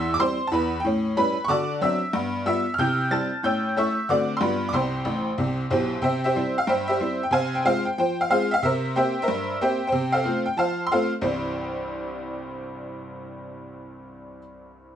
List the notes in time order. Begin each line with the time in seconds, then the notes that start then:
Already playing: E2 E3 E5 C6 E6
0.14 D6
0.19 G3 C4 E4 C5 C6
0.47 A5
0.52 E2 E3 B4 B5
0.80 G5
0.85 A2 C#4
1.17 G3 C#4 E4 B4 B5
1.45 D3 C#6
1.49 F#4 D5 A5 D6
1.81 F#3 C4 D4 E5 E6
2.13 G2 B3
2.46 G3 B3 F4 E5 E6
2.74 F6
2.78 C3 E4 G5 E6 G6
3.11 G3 C4 E4 A5 A6
3.43 A2 C#4 G5 E6 G6
3.76 A3 C#4 E4 E5 C#6 E6
4.09 D3 A3 C4 F#4 D5 D6
4.37 C6
4.41 G2 G3 B3 D4 F4 B4 B5
4.69 D6
4.73 C2 C3 C5 G5 C6
5.05 A1 A2
5.38 C2 C3
5.70 B1 B2 E4 G4 C5
6.02 C3 C5 E5 G5
6.24 G4 C5 E5
6.36 G3 C4 E4
6.58 F5
6.67 G2 C5 E5 G5
6.88 G4 C5 E5
7.01 G3 C4 E4
7.23 G5
7.31 C3 C5 F5 G#5
7.55 G5
7.65 G#3 C4 F4 G#4 C5 F5
7.85 G5
7.98 F3 C5 G5
8.21 F5
8.30 G#3 C4 F4 G#4 C5 F5
8.51 E5 F5
8.63 C3 A#4 C5 E5
8.95 A#3 C4 G4 C5 E5 G5
9.22 A#4 C5 E5
9.28 G2
9.61 A#3 C4 G4 C5 E5 G5
9.87 C5 G5
9.92 C3
10.12 A4 C5 F5
10.24 A3 C4 F4
10.46 G5
10.57 F3 C5 F5 A5
10.87 C6
10.91 A3 C4 F4 A4 C5 F5
11.21 C2 G2 E3 G3 C4 E4 C5